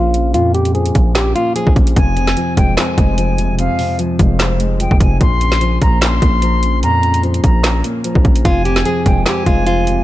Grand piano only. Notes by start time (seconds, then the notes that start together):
Already playing: A#2 C#3 F3 A#3 C#4
0.14 C#3
0.35 A#2
0.55 C#3
0.75 F3
0.95 A#3
1.15 C#4
1.35 A#3
1.56 F3
1.76 C#3
1.96 F2
2.17 C3
2.37 F3
2.57 G#3
2.78 C4
2.98 G#3
3.18 F3
3.38 C3
3.59 F2
3.79 C3
3.99 F3
4.19 G#3
4.40 C4
4.60 G#3
4.80 F3
5.00 C3
5.21 A#2
5.41 C#3
5.61 F3
5.82 A#3
6.02 C#4
6.22 A#3
6.42 F3
6.63 C#3
6.83 A#2
7.03 C#3
7.23 F3
7.44 A#3
7.64 C#4
7.84 A#3
8.04 F3
8.25 C#3
8.45 F2
8.66 C3
8.85 F3
9.06 G#3
9.26 C4
9.47 G#3
9.67 F3
9.87 C3